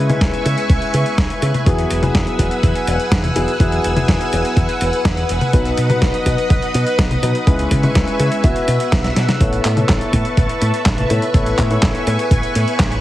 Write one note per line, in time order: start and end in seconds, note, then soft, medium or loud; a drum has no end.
0.00 0.15 C#3 medium
0.00 1.65 B4 medium
0.00 1.64 E5 medium
0.00 1.65 G#5 medium
0.00 1.64 C#6 medium
0.09 1.64 G#3 medium
0.09 1.64 C#4 medium
0.09 1.64 E4 medium
0.09 1.64 B4 medium
0.09 closed hi-hat soft
0.09 high tom medium
0.21 0.30 C#2 medium
0.21 kick loud
0.21 snare loud
0.21 closed hi-hat medium
0.34 closed hi-hat soft
0.46 0.54 C#3 loud
0.46 closed hi-hat medium
0.58 closed hi-hat soft
0.70 0.78 C#2 medium
0.70 kick loud
0.70 closed hi-hat medium
0.82 closed hi-hat soft
0.94 1.03 C#3 loud
0.94 closed hi-hat medium
1.06 closed hi-hat soft
1.18 1.27 C#2 medium
1.18 kick loud
1.18 snare loud
1.18 closed hi-hat medium
1.30 closed hi-hat soft
1.42 1.51 C#3 loud
1.42 closed hi-hat medium
1.54 closed hi-hat soft
1.54 high tom medium
1.66 1.84 E2 medium
1.66 2.00 F#3 medium
1.66 2.00 B3 medium
1.66 2.00 E4 medium
1.66 2.00 G#4 medium
1.66 9.37 B4 medium
1.66 7.43 F#5 medium
1.66 5.50 G#5 medium
1.66 5.50 E6 medium
1.66 kick loud
1.66 closed hi-hat medium
1.78 closed hi-hat soft
1.91 2.08 E1 medium
1.91 closed hi-hat medium
2.03 3.33 F#3 medium
2.03 3.33 B3 medium
2.03 3.33 E4 medium
2.03 3.33 G#4 medium
2.03 closed hi-hat soft
2.03 high tom medium
2.15 2.24 E2 medium
2.15 kick loud
2.15 snare loud
2.15 closed hi-hat medium
2.27 closed hi-hat soft
2.39 2.48 E1 loud
2.39 kick medium
2.39 closed hi-hat medium
2.51 closed hi-hat soft
2.63 2.72 E2 medium
2.63 kick loud
2.63 closed hi-hat medium
2.75 closed hi-hat soft
2.87 2.96 E1 medium
2.87 closed hi-hat medium
3.00 closed hi-hat soft
3.12 3.29 E2 medium
3.12 kick loud
3.12 snare loud
3.12 closed hi-hat medium
3.24 closed hi-hat soft
3.24 high tom medium
3.36 3.45 E1 medium
3.36 3.48 F#3 medium
3.36 3.48 B3 medium
3.36 3.48 E4 medium
3.36 3.48 G#4 loud
3.36 closed hi-hat medium
3.48 closed hi-hat soft
3.60 3.78 E2 medium
3.60 3.93 F#3 medium
3.60 3.93 B3 medium
3.60 3.93 E4 medium
3.60 3.93 G#4 medium
3.60 kick loud
3.60 closed hi-hat medium
3.72 closed hi-hat soft
3.84 4.02 E1 medium
3.84 closed hi-hat medium
3.96 5.51 F#3 medium
3.96 5.51 B3 medium
3.96 5.51 E4 medium
3.96 5.51 G#4 medium
3.96 closed hi-hat soft
3.96 high tom medium
4.08 4.17 E2 medium
4.08 kick loud
4.08 snare loud
4.08 closed hi-hat medium
4.21 closed hi-hat soft
4.33 4.41 E1 loud
4.33 closed hi-hat medium
4.45 closed hi-hat soft
4.57 4.66 E2 medium
4.57 kick loud
4.57 closed hi-hat medium
4.69 closed hi-hat soft
4.81 4.90 E1 medium
4.81 closed hi-hat medium
4.93 closed hi-hat soft
5.05 5.23 E2 medium
5.05 kick loud
5.05 snare loud
5.05 closed hi-hat medium
5.17 closed hi-hat soft
5.29 5.38 E1 medium
5.29 closed hi-hat medium
5.41 closed hi-hat soft
5.41 high tom medium
5.53 5.71 B1 medium
5.53 5.87 F#3 medium
5.53 5.87 B3 medium
5.53 5.87 D#4 medium
5.53 5.87 B4 medium
5.53 7.45 D#5 medium
5.53 7.45 D#6 medium
5.53 kick loud
5.53 closed hi-hat medium
5.65 closed hi-hat soft
5.77 5.95 B2 medium
5.77 closed hi-hat medium
5.90 7.20 F#3 medium
5.90 7.20 B3 medium
5.90 7.20 D#4 medium
5.90 7.20 B4 medium
5.90 closed hi-hat soft
5.90 high tom medium
6.02 6.11 B1 medium
6.02 kick loud
6.02 snare loud
6.02 closed hi-hat medium
6.14 closed hi-hat soft
6.26 6.35 B2 loud
6.26 kick medium
6.26 closed hi-hat loud
6.38 closed hi-hat soft
6.50 6.59 B1 medium
6.50 kick loud
6.50 closed hi-hat medium
6.62 closed hi-hat soft
6.74 6.83 B2 medium
6.74 closed hi-hat medium
6.87 closed hi-hat soft
6.99 7.16 B1 medium
6.99 kick loud
6.99 snare loud
6.99 closed hi-hat medium
7.11 closed hi-hat soft
7.11 high tom medium
7.23 7.32 B2 medium
7.23 7.35 F#3 medium
7.23 7.35 B3 medium
7.23 7.35 D#4 medium
7.23 7.35 B4 medium
7.23 closed hi-hat loud
7.35 closed hi-hat soft
7.47 7.65 C#2 loud
7.47 7.81 G#3 medium
7.47 7.81 C#4 medium
7.47 7.81 E4 medium
7.47 7.81 B4 medium
7.47 9.39 E5 medium
7.47 8.43 G#5 medium
7.47 8.43 C#6 medium
7.47 kick loud
7.47 closed hi-hat medium
7.59 closed hi-hat soft
7.71 7.89 C#3 medium
7.71 kick medium
7.71 closed hi-hat loud
7.83 8.42 G#3 medium
7.83 8.42 C#4 medium
7.83 8.42 E4 medium
7.83 8.42 B4 medium
7.83 closed hi-hat soft
7.83 high tom medium
7.95 8.04 C#2 medium
7.95 kick loud
7.95 snare loud
7.95 closed hi-hat medium
8.07 closed hi-hat soft
8.20 8.28 C#3 loud
8.20 closed hi-hat loud
8.32 closed hi-hat soft
8.44 8.53 B1 medium
8.44 9.16 B3 medium
8.44 9.16 E4 medium
8.44 9.16 F#4 medium
8.44 9.16 E5 loud
8.44 9.40 F#5 medium
8.44 9.40 E6 medium
8.44 kick loud
8.44 closed hi-hat medium
8.56 closed hi-hat soft
8.68 8.77 B2 medium
8.68 closed hi-hat loud
8.80 closed hi-hat soft
8.92 9.10 B1 medium
8.92 kick loud
8.92 snare loud
8.92 closed hi-hat medium
9.04 snare medium
9.04 closed hi-hat soft
9.16 9.25 B2 loud
9.16 snare medium
9.16 closed hi-hat loud
9.29 snare medium
9.29 closed hi-hat soft
9.29 high tom medium
9.41 9.58 A1 medium
9.41 9.74 B3 medium
9.41 9.74 E4 medium
9.41 9.74 A4 medium
9.41 13.01 B4 medium
9.41 9.74 C#5 medium
9.41 13.01 E5 medium
9.41 11.32 A5 medium
9.41 13.01 C#6 medium
9.41 kick loud
9.41 closed hi-hat medium
9.53 closed hi-hat soft
9.65 9.82 A2 medium
9.65 clap medium
9.65 closed hi-hat loud
9.77 11.07 B3 medium
9.77 11.07 E4 medium
9.77 11.07 A4 medium
9.77 11.07 C#5 medium
9.77 closed hi-hat soft
9.77 high tom medium
9.89 9.98 A1 medium
9.89 kick loud
9.89 snare loud
9.89 clap medium
9.89 closed hi-hat medium
10.01 closed hi-hat soft
10.13 10.22 A2 loud
10.13 kick medium
10.13 closed hi-hat medium
10.25 closed hi-hat soft
10.37 10.46 A1 medium
10.37 kick loud
10.37 closed hi-hat medium
10.49 closed hi-hat soft
10.62 10.70 A2 medium
10.62 closed hi-hat loud
10.74 closed hi-hat soft
10.86 11.03 A1 medium
10.86 kick loud
10.86 snare loud
10.86 clap medium
10.86 closed hi-hat medium
10.98 closed hi-hat soft
10.98 high tom medium
11.10 11.19 A2 medium
11.10 11.22 B3 medium
11.10 11.22 E4 medium
11.10 11.22 A4 medium
11.10 11.22 C#5 medium
11.10 closed hi-hat loud
11.22 closed hi-hat soft
11.34 11.52 A1 medium
11.34 11.68 B3 medium
11.34 11.68 E4 medium
11.34 11.68 A4 medium
11.34 11.68 C#5 medium
11.34 13.01 G#5 medium
11.34 kick loud
11.34 closed hi-hat medium
11.46 closed hi-hat soft
11.58 11.76 A2 medium
11.58 kick medium
11.58 clap medium
11.58 closed hi-hat medium
11.71 13.01 B3 medium
11.71 13.01 E4 medium
11.71 13.01 A4 medium
11.71 13.01 C#5 medium
11.71 closed hi-hat soft
11.83 11.91 A1 medium
11.83 kick loud
11.83 snare loud
11.83 clap loud
11.83 closed hi-hat medium
11.95 closed hi-hat soft
12.07 12.16 A2 loud
12.07 closed hi-hat medium
12.19 closed hi-hat soft
12.31 12.40 A1 medium
12.31 kick loud
12.31 closed hi-hat medium
12.43 closed hi-hat soft
12.55 12.64 A2 medium
12.55 closed hi-hat loud
12.68 closed hi-hat soft
12.79 12.97 A1 medium
12.79 kick loud
12.79 snare loud
12.79 clap loud
12.79 closed hi-hat medium
12.92 closed hi-hat soft